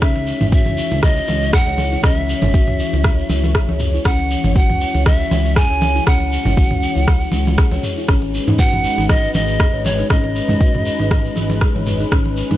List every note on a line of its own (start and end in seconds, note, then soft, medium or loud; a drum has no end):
0.02 0.33 C#2 medium
0.02 8.05 E3 medium
0.02 0.14 C#4 medium
0.02 8.05 C#5 medium
0.02 0.49 E5 medium
0.02 kick loud
0.02 cross-stick medium
0.02 shekere medium
0.16 muted conga medium
0.27 shekere medium
0.40 0.68 G#1 loud
0.40 0.51 E4 medium
0.40 mid tom medium
0.40 high conga medium
0.40 shekere soft
0.52 0.65 F#4 medium
0.52 1.05 E5 loud
0.52 kick loud
0.52 muted conga soft
0.52 shekere medium
0.66 0.81 C#2 medium
0.66 mid tom medium
0.66 high conga medium
0.78 shekere loud
0.91 1.21 C#2 loud
0.91 1.02 E4 medium
0.91 muted conga medium
0.91 shekere soft
1.03 1.55 D#5 loud
1.03 kick loud
1.03 cross-stick medium
1.03 high conga medium
1.03 shekere soft
1.16 shekere soft
1.28 1.59 C#2 medium
1.28 1.40 G#3 medium
1.28 muted conga soft
1.28 high conga loud
1.28 shekere medium
1.42 shekere soft
1.53 1.66 G#4 loud
1.53 2.05 F#5 loud
1.53 kick loud
1.53 cross-stick medium
1.53 mid tom medium
1.53 shekere medium
1.67 1.97 C#2 medium
1.67 1.73 C#5 medium
1.78 muted conga medium
1.78 high conga loud
1.78 shekere medium
1.92 2.03 E4 medium
1.92 shekere soft
2.03 2.35 C#2 medium
2.03 2.16 C#4 medium
2.03 2.17 D#5 loud
2.03 kick loud
2.03 cross-stick loud
2.03 low conga medium
2.03 shekere medium
2.17 3.80 E5 loud
2.17 muted conga soft
2.29 shekere medium
2.42 2.70 G#1 loud
2.42 2.53 E4 medium
2.42 mid tom medium
2.42 high conga loud
2.42 low conga medium
2.42 shekere soft
2.54 2.66 F#4 medium
2.54 kick loud
2.54 muted conga soft
2.54 shekere medium
2.67 2.83 C#2 medium
2.67 mid tom medium
2.67 high conga medium
2.80 shekere loud
2.93 3.23 C#2 loud
2.93 3.03 E4 medium
2.93 muted conga medium
2.93 shekere soft
3.04 kick loud
3.04 cross-stick medium
3.04 high conga medium
3.04 shekere medium
3.18 shekere soft
3.30 3.61 C#2 medium
3.30 3.42 G#3 medium
3.30 muted conga soft
3.30 high conga medium
3.30 shekere loud
3.43 high conga loud
3.43 shekere soft
3.55 3.68 G#4 loud
3.55 kick loud
3.55 cross-stick loud
3.55 shekere soft
3.69 3.99 C#2 medium
3.69 3.75 C#5 medium
3.69 high conga medium
3.79 mid tom medium
3.79 muted conga medium
3.79 shekere loud
3.94 4.05 E4 medium
3.94 shekere soft
4.05 4.36 C#2 loud
4.05 8.05 C#4 medium
4.05 4.18 C#4 medium
4.05 4.52 F#5 medium
4.05 kick loud
4.05 cross-stick loud
4.05 shekere medium
4.19 muted conga soft
4.31 shekere medium
4.44 4.71 G#1 loud
4.44 4.55 E4 medium
4.44 mid tom medium
4.44 high conga medium
4.44 shekere soft
4.55 4.68 F#4 medium
4.55 5.08 F#5 loud
4.55 kick loud
4.55 muted conga soft
4.55 shekere medium
4.69 4.85 C#2 medium
4.69 mid tom medium
4.69 high conga medium
4.81 shekere loud
4.95 5.25 C#2 loud
4.95 5.05 E4 medium
4.95 muted conga medium
4.95 shekere soft
5.06 5.58 E5 loud
5.06 kick loud
5.06 cross-stick medium
5.06 high conga loud
5.06 shekere medium
5.20 shekere soft
5.31 5.62 C#2 medium
5.31 5.44 G#3 medium
5.31 muted conga soft
5.31 high conga loud
5.31 shekere loud
5.45 shekere soft
5.56 5.70 G#4 loud
5.56 6.08 G#5 loud
5.56 kick loud
5.56 cross-stick medium
5.56 mid tom medium
5.56 shekere medium
5.70 6.00 C#2 medium
5.70 5.76 C#5 medium
5.81 muted conga soft
5.81 high conga loud
5.81 shekere medium
5.96 6.06 E4 medium
5.96 shekere soft
6.07 6.38 C#2 medium
6.07 6.19 C#4 medium
6.07 7.83 F#5 medium
6.07 kick loud
6.07 cross-stick loud
6.07 low conga medium
6.07 shekere medium
6.20 muted conga soft
6.32 shekere loud
6.45 6.73 G#1 loud
6.45 6.56 E4 medium
6.45 mid tom medium
6.45 high conga medium
6.45 low conga medium
6.45 shekere soft
6.57 6.70 F#4 medium
6.57 kick loud
6.57 muted conga soft
6.57 shekere medium
6.71 6.86 C#2 medium
6.71 mid tom medium
6.71 high conga medium
6.83 shekere loud
6.95 7.26 C#2 loud
6.95 7.07 E4 medium
6.95 muted conga soft
6.95 shekere soft
7.08 kick loud
7.08 cross-stick medium
7.08 high conga medium
7.08 shekere medium
7.21 shekere soft
7.32 7.64 C#2 medium
7.32 7.45 G#3 medium
7.32 muted conga soft
7.32 high conga loud
7.32 shekere medium
7.47 high conga loud
7.47 shekere soft
7.57 7.71 G#4 loud
7.57 kick loud
7.57 cross-stick medium
7.57 shekere soft
7.71 7.79 C#2 medium
7.71 7.78 C#5 medium
7.71 high conga medium
7.71 shekere soft
7.83 mid tom medium
7.83 muted conga soft
7.83 shekere medium
7.97 8.08 E4 medium
7.97 shekere soft
8.08 8.40 G#1 medium
8.08 12.57 G#3 medium
8.08 8.21 C#4 medium
8.08 12.08 D#4 medium
8.08 12.57 B4 medium
8.08 kick loud
8.08 cross-stick medium
8.08 shekere soft
8.22 muted conga medium
8.34 shekere medium
8.47 8.74 G#2 loud
8.47 8.58 D#4 medium
8.47 mid tom medium
8.47 high conga loud
8.47 shekere soft
8.59 8.71 F#4 medium
8.59 9.06 F#5 loud
8.59 kick loud
8.59 muted conga soft
8.59 shekere medium
8.72 8.88 G#1 medium
8.72 mid tom medium
8.72 high conga medium
8.84 shekere medium
8.98 9.28 G#1 medium
8.98 9.08 D#4 medium
8.98 muted conga soft
8.98 shekere soft
9.09 9.33 D#5 loud
9.09 kick loud
9.09 cross-stick medium
9.09 high conga loud
9.09 shekere soft
9.24 shekere soft
9.34 9.66 G#1 medium
9.34 9.47 G#3 medium
9.34 9.87 D#5 loud
9.34 muted conga soft
9.34 high conga loud
9.34 shekere medium
9.48 shekere soft
9.60 9.73 G#4 loud
9.60 kick loud
9.60 cross-stick loud
9.60 mid tom medium
9.60 shekere medium
9.73 10.03 G#1 medium
9.73 9.80 C#5 medium
9.85 10.12 C#5 medium
9.85 muted conga medium
9.85 high conga loud
9.85 shekere loud
9.99 10.10 D#4 medium
9.99 shekere soft
10.10 10.41 G#1 loud
10.10 10.23 C#4 medium
10.10 11.62 D#5 medium
10.10 kick loud
10.10 cross-stick medium
10.10 low conga medium
10.10 shekere soft
10.24 muted conga soft
10.35 shekere medium
10.48 10.76 G#2 loud
10.48 10.60 D#4 medium
10.48 mid tom medium
10.48 high conga medium
10.48 low conga medium
10.48 shekere soft
10.60 10.73 F#4 medium
10.60 kick loud
10.60 muted conga soft
10.60 shekere soft
10.74 10.90 G#1 medium
10.74 mid tom medium
10.74 high conga medium
10.86 shekere medium
10.99 11.30 G#1 loud
10.99 11.10 D#4 medium
10.99 muted conga medium
10.99 shekere soft
11.11 kick loud
11.11 cross-stick medium
11.11 high conga medium
11.11 shekere medium
11.25 shekere soft
11.36 11.67 G#1 medium
11.36 11.49 G#3 medium
11.36 muted conga soft
11.36 high conga medium
11.36 shekere medium
11.50 high conga loud
11.50 shekere soft
11.61 11.75 G#4 loud
11.61 kick loud
11.61 cross-stick medium
11.61 shekere soft
11.75 12.05 G#1 medium
11.75 11.81 C#5 medium
11.75 high conga medium
11.87 mid tom medium
11.87 muted conga medium
11.87 shekere medium
12.00 12.11 D#4 medium
12.00 shekere soft
12.11 12.43 G#1 loud
12.11 12.24 C#4 medium
12.11 12.57 C#4 medium
12.11 kick loud
12.11 cross-stick medium
12.11 shekere soft
12.26 muted conga soft
12.37 shekere medium
12.51 12.57 G#2 loud
12.51 12.57 D#4 medium
12.51 mid tom medium
12.51 high conga medium
12.51 shekere soft